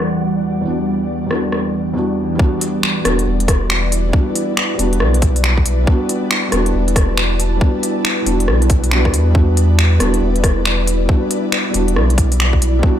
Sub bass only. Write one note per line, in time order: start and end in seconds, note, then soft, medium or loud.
3.05 3.25 E1 loud
3.26 4.12 E1 loud
4.78 5.02 E1 loud
5.00 5.86 B1 medium
6.52 6.73 E1 loud
6.74 7.60 E1 loud
8.26 8.49 E1 medium
8.48 9.15 B1 medium
9.13 9.99 E2 loud
10.00 10.20 E1 loud
10.22 11.08 E1 loud
11.74 11.97 E1 loud
11.96 12.82 B1 medium